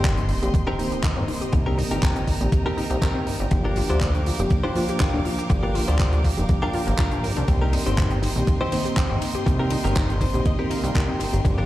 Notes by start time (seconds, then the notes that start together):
Already playing: G1 D#3 A#3 C4 D#4 G4 A#4 C5 D#5 G5 C6, sub drop
0.04 A#3, kick, clap, closed hi-hat
0.18 C4, closed hi-hat
0.29 D#4, open hi-hat
0.42 A#1 D#3 A#3 C4 G4, closed hi-hat
0.54 A#3, muted clean electric guitar stroke, kick, closed hi-hat
0.67 C4 D#4 G4 A#4
0.78 D#3 A#3 C4 D#4 C5, open hi-hat
0.92 G4, closed hi-hat
1.03 A#3 C4 D#4 G4 A#4, kick, clap, closed hi-hat
1.17 G1 C4
1.28 D#4, open hi-hat
1.41 G4, closed hi-hat
1.52 C2 D#3 A#3 C4 G4 A#5, muted clean electric guitar stroke, kick, closed hi-hat
1.66 C4 D#4 G4 A#4
1.78 D#4, open hi-hat
1.91 G1 C4 D#4 G4 A#4, closed hi-hat
2.02 A#3, kick, clap, closed hi-hat
2.16 C4, closed hi-hat
2.27 D#4, kick, open hi-hat
2.40 A#1 D#3 A#3 C4 G4, closed hi-hat
2.52 A#3, muted clean electric guitar stroke, kick, closed hi-hat
2.65 C4 D#4 G4 A#4
2.77 D#4, open hi-hat
2.90 C2 G4, closed hi-hat
3.02 A#3 C4 D#4 G4 A#4, kick, clap, closed hi-hat
3.15 C4
3.27 G1 D#4, open hi-hat
3.39 G1 G4, closed hi-hat
3.51 G1 F3 A#3 D4 G4 F5 D6, muted clean electric guitar stroke, kick, closed hi-hat
3.64 D4 F4 G4 A#4
3.76 F4, open hi-hat
3.89 D2 D4 F4 G4 C5, closed hi-hat
4.01 A#3, kick, clap, closed hi-hat
4.15 D4, closed hi-hat
4.26 F4, open hi-hat
4.39 F1 F3 A#3 D4 G4, closed hi-hat
4.50 A#3, muted clean electric guitar stroke, kick, closed hi-hat
4.64 D4 F4 G4 C5
4.75 F3 A#3 D4 F4 C5, open hi-hat
4.88 G4, closed hi-hat
5.00 A#3 D4 F4 G4 A#4, kick, clap, closed hi-hat
5.14 D1 D4
5.25 F4, open hi-hat
5.38 G4, closed hi-hat
5.49 G1 F3 A#3 D4 G4, muted clean electric guitar stroke, kick, closed hi-hat
5.63 D4 F4 G4 A#4
5.75 F4, open hi-hat
5.88 D2 D4 F4 G4 C5, closed hi-hat
5.99 A#3, kick, clap, closed hi-hat
6.13 D4, closed hi-hat
6.24 F4, kick, open hi-hat
6.37 F1 F3 A#3 D4 G4, closed hi-hat
6.49 A#3, muted clean electric guitar stroke, kick, closed hi-hat
6.62 D4 F4 G4 A#4
6.73 F4, open hi-hat
6.87 G1 A#3, closed hi-hat
6.98 D4 F4 G4 A#4 D5, kick, clap, closed hi-hat
7.11 A#1 D4, closed hi-hat
7.24 G1 A#4, open hi-hat
7.36 C2 D4, closed hi-hat
7.47 C2 D#3 A#3 C4 G4 D#5 C6, muted clean electric guitar stroke, kick, closed hi-hat, ride
7.61 C4 D#4 G4 A#4
7.73 D#4, open hi-hat, ride
7.86 G1 C4 D#4 G4 C5, closed hi-hat
7.97 A#3, kick, clap, closed hi-hat, ride
8.11 C4, closed hi-hat
8.22 D#4, open hi-hat, ride
8.36 A#1 D#3 A#3 C4 G4, closed hi-hat
8.47 A#3, muted clean electric guitar stroke, kick, closed hi-hat, ride
8.60 C4 D#4 G4 C5
8.71 D#3 A#3 C4 D#4 C5, open hi-hat, ride
8.85 G4, closed hi-hat
8.96 A#3 C4 D#4 G4 C5, kick, clap, closed hi-hat, ride
9.10 G1 C4
9.21 D#4, open hi-hat, ride
9.35 G4, closed hi-hat
9.46 C2 D#3 A#3 C4 G4, muted clean electric guitar stroke, kick, closed hi-hat, ride
9.59 C4 D#4 G4 A#4
9.70 D#4, open hi-hat, ride
9.84 G1 C4 D#4 G4 A#4, closed hi-hat
9.95 A#3, kick, clap, closed hi-hat, ride
10.09 C4, closed hi-hat
10.21 D#4 C5, kick, open hi-hat, ride
10.33 A#1 D#3 A#3 C4 G4, closed hi-hat
10.45 A#3 D#5, muted clean electric guitar stroke, kick, closed hi-hat, ride
10.59 C4 D#4 G4 A#4
10.70 D#4 F5, open hi-hat, ride
10.84 C2 G4, closed hi-hat
10.95 A#3 C4 D#4 G4 A#4 G5, kick, clap, closed hi-hat, ride
11.08 C4
11.20 G1 D#4, open hi-hat, ride
11.33 G1 G4, closed hi-hat
11.44 G1 F3 A#3 D4 G4 A#4 F5 G5 D6, muted clean electric guitar stroke, kick, closed hi-hat, ride
11.58 D4 F4 G4 A#4